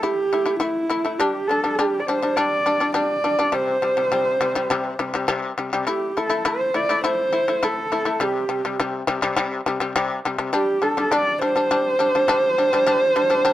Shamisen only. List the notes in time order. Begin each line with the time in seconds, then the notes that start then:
0.03 A3 E4
0.33 A3 E4
0.45 A3 E4
0.60 A3 E4
0.89 A3 E4
1.05 A3 E4
1.20 G3 D4
1.49 G3 D4
1.64 G3 D4
1.79 G3 D4
2.08 G3 D4
2.22 G3 D4
2.37 G3 D4
2.66 G3 D4
2.80 G3 D4
2.94 G3 D4
3.24 G3 D4
3.39 G3 D4
3.52 C3 G3
3.82 C3 G3
3.97 C3 G3
4.12 C3 G3
4.41 C3 G3
4.55 C3 G3
4.70 C3 G3
4.99 C3 G3
5.14 C3 G3
5.28 C3 G3
5.58 C3 G3
5.73 C3 G3
5.87 A3 E4
6.17 A3 E4
6.29 A3 E4
6.45 A3 E4
6.74 A3 E4
6.89 A3 E4
7.04 A3 E4
7.33 A3 E4
7.48 A3 E4
7.63 A3 E4
7.92 A3 E4
8.05 A3 E4
8.20 C3 G3
8.49 C3 G3
8.65 C3 G3
8.80 C3 G3
9.07 C3 G3
9.22 C3 G3
9.36 C3 G3
9.66 C3 G3
9.80 C3 G3
9.96 C3 G3
10.25 C3 G3
10.38 C3 G3
10.53 G3 D4
10.82 G3 D4
10.97 G3 D4
11.11 G3 D4
11.41 G3 D4
11.56 G3 D4
11.71 G3 D4
11.99 G3 D4
12.15 G3 D4
12.28 G3 D4
12.58 G3 D4
12.73 G3 D4
12.87 G3 D4
13.16 G3 D4
13.30 G3 D4
13.45 G3 D4